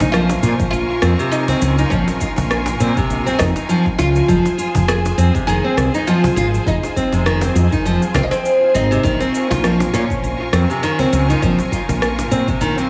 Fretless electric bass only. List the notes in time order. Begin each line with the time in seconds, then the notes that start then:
0.00 A#1
0.43 A#2
0.73 A#1
1.02 F2
1.62 C#2
1.91 A#1
2.38 A#1
2.80 A#2
3.10 A#1
3.40 F2
3.99 C#2
4.29 F1
4.75 F1
5.18 F2
5.48 F1
5.77 C2
6.36 G#1
6.67 F1
7.12 F1
7.55 F2
7.85 F1
8.15 C2
8.75 G#1
9.04 A#1
9.51 A#1
9.94 A#2
10.23 A#1
10.53 F2
11.13 C#2
11.42 A#1
11.89 A#1
12.31 A#2
12.61 A#1